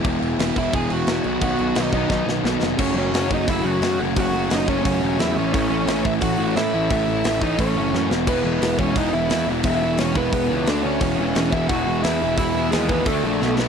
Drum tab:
CC |xxxxxxxx|xxxx----|x-------|--------|
HH |--------|--------|--o-o-o-|o-o-o-o-|
SD |--o---o-|--o-oooo|--o---o-|--o---o-|
BD |o--oo---|o--oo---|o--oo---|o--oo---|

CC |--------|--------|x-------|--------|
HH |o-o-o-o-|o-o-o---|--o-o-o-|o-o-o-o-|
SD |--o---o-|--o---oo|--o---o-|--o---o-|
BD |o--oo---|o--oo---|o--oo---|o--oo---|

CC |--------|--------|
HH |o-o-o-o-|o-o-o---|
SD |--o---o-|--o---oo|
BD |o--oo---|o--oo---|